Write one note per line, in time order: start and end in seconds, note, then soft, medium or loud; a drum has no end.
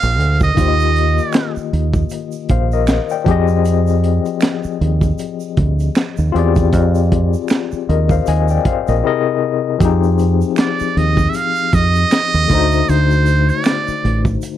0.00 0.19 A#1 medium
0.00 0.52 A#2 medium
0.00 0.53 A#3 medium
0.00 0.54 G#4 medium
0.00 0.55 C5 medium
0.00 0.59 D5 medium
0.00 0.42 F5 loud
0.00 shaker soft
0.19 0.50 D2 medium
0.19 closed hi-hat medium
0.40 1.53 D#5 medium
0.40 kick loud
0.40 shaker soft
0.54 1.19 D#2 loud
0.54 3.21 D#3 medium
0.54 3.22 A#3 medium
0.54 3.23 F4 medium
0.54 kick loud
0.54 closed hi-hat medium
0.54 shaker medium
0.60 3.24 G4 medium
0.60 0.67 C5 medium
0.68 2.51 D#5 medium
0.80 shaker soft
0.96 closed hi-hat medium
1.18 closed hi-hat soft
1.18 shaker soft
1.33 finger snap medium
1.33 shaker medium
1.34 finger snap medium
1.34 snare loud
1.34 closed hi-hat medium
1.56 muted fingered electric bass stroke soft
1.56 shaker soft
1.73 2.04 D#2 medium
1.73 closed hi-hat medium
1.94 kick medium
1.94 shaker soft
2.10 closed hi-hat medium
2.10 shaker medium
2.32 shaker soft
2.49 2.98 A#1 medium
2.49 2.71 C5 soft
2.49 2.71 F5 medium
2.49 kick loud
2.49 closed hi-hat medium
2.72 3.09 A#4 medium
2.72 3.09 D#5 medium
2.72 shaker soft
2.87 finger snap medium
2.87 snare medium
2.87 closed hi-hat medium
2.87 shaker medium
3.09 3.48 D5 medium
3.09 3.47 G5 medium
3.09 shaker soft
3.24 4.18 F2 medium
3.24 6.29 F3 medium
3.24 6.30 C4 medium
3.24 6.31 G4 medium
3.24 kick loud
3.24 closed hi-hat medium
3.29 6.32 G#4 medium
3.29 6.33 D#5 medium
3.48 shaker soft
3.65 closed hi-hat medium
3.65 shaker medium
3.87 shaker soft
4.04 closed hi-hat medium
4.25 closed hi-hat soft
4.25 shaker soft
4.41 finger snap medium
4.41 closed hi-hat medium
4.41 shaker medium
4.42 finger snap medium
4.42 snare loud
4.64 muted fingered electric bass stroke soft
4.64 shaker soft
4.81 5.11 D#2 medium
4.81 closed hi-hat medium
5.01 kick medium
5.01 closed hi-hat soft
5.01 shaker soft
5.18 closed hi-hat medium
5.18 shaker medium
5.40 shaker soft
5.57 5.88 D2 medium
5.57 kick loud
5.57 closed hi-hat medium
5.79 closed hi-hat soft
5.79 shaker soft
5.95 finger snap medium
5.95 snare medium
5.95 closed hi-hat medium
5.95 shaker medium
6.17 6.31 D#2 medium
6.17 shaker soft
6.32 6.73 E2 medium
6.32 8.99 C4 medium
6.32 8.98 F4 medium
6.32 9.00 G4 medium
6.32 closed hi-hat medium
6.38 9.01 G#4 medium
6.38 7.87 D5 medium
6.56 kick medium
6.56 closed hi-hat soft
6.56 shaker soft
6.73 7.34 F2 loud
6.73 kick loud
6.73 closed hi-hat medium
6.73 shaker medium
6.95 shaker soft
7.12 kick medium
7.12 closed hi-hat medium
7.33 shaker soft
7.48 finger snap medium
7.48 shaker medium
7.50 finger snap medium
7.50 snare loud
7.50 closed hi-hat medium
7.72 muted fingered electric bass stroke soft
7.72 shaker soft
7.89 8.19 D#2 medium
7.89 8.10 A#4 soft
7.89 8.10 D#5 medium
7.89 closed hi-hat medium
8.09 8.27 C5 medium
8.09 8.26 F5 medium
8.09 kick medium
8.09 shaker soft
8.26 8.58 D#2 medium
8.26 8.49 D#5 medium
8.26 8.48 G#5 medium
8.26 closed hi-hat medium
8.26 shaker medium
8.48 8.65 D5 medium
8.48 8.65 G5 medium
8.48 shaker medium
8.65 8.87 C5 soft
8.65 8.87 F5 medium
8.65 kick medium
8.65 closed hi-hat medium
8.87 9.01 A#1 medium
8.87 9.05 A#4 soft
8.87 9.06 D#5 medium
8.87 closed hi-hat soft
8.87 shaker soft
9.03 9.80 C3 medium
9.03 9.79 C4 medium
9.03 9.81 E4 medium
9.03 9.81 G#4 medium
9.03 9.82 A#4 medium
9.03 9.82 D#5 medium
9.78 10.42 F2 medium
9.78 12.45 F3 medium
9.78 12.45 C4 medium
9.78 12.46 G4 medium
9.78 kick loud
9.78 closed hi-hat medium
9.78 shaker medium
9.83 12.48 D#4 medium
9.83 12.47 G#4 medium
10.03 shaker soft
10.19 closed hi-hat medium
10.19 shaker soft
10.41 shaker soft
10.56 finger snap medium
10.56 closed hi-hat medium
10.56 shaker medium
10.58 10.99 D5 medium
10.58 finger snap medium
10.58 snare loud
10.79 muted fingered electric bass stroke soft
10.79 shaker soft
10.97 11.27 D#2 medium
10.97 11.31 D#5 loud
10.97 closed hi-hat medium
11.17 kick medium
11.17 shaker soft
11.30 11.37 E5 medium
11.30 shaker medium
11.35 11.76 F5 loud
11.35 closed hi-hat medium
11.55 shaker soft
11.72 12.04 F2 medium
11.72 12.91 D#5 loud
11.72 kick loud
11.72 closed hi-hat medium
11.72 shaker soft
11.95 closed hi-hat soft
11.95 shaker soft
12.11 finger snap medium
12.11 snare loud
12.11 closed hi-hat medium
12.11 shaker medium
12.33 12.47 D#2 medium
12.33 shaker soft
12.48 12.81 D2 medium
12.48 14.58 D3 medium
12.48 14.58 A3 medium
12.48 12.54 D#4 medium
12.48 kick medium
12.48 closed hi-hat medium
12.48 shaker soft
12.53 14.58 D#4 medium
12.53 14.58 C5 medium
12.58 14.58 F#4 medium
12.71 closed hi-hat soft
12.71 shaker soft
12.89 13.50 D2 loud
12.89 13.51 C5 medium
12.89 closed hi-hat medium
12.89 shaker medium
13.11 shaker soft
13.26 closed hi-hat medium
13.26 shaker soft
13.49 14.26 D5 medium
13.49 closed hi-hat soft
13.49 shaker soft
13.64 finger snap medium
13.64 closed hi-hat medium
13.64 shaker medium
13.66 finger snap medium
13.66 snare loud
13.87 muted fingered electric bass stroke soft
13.87 shaker soft
14.05 14.35 A1 medium
14.05 closed hi-hat medium
14.25 kick medium
14.25 shaker soft
14.42 closed hi-hat medium
14.42 shaker medium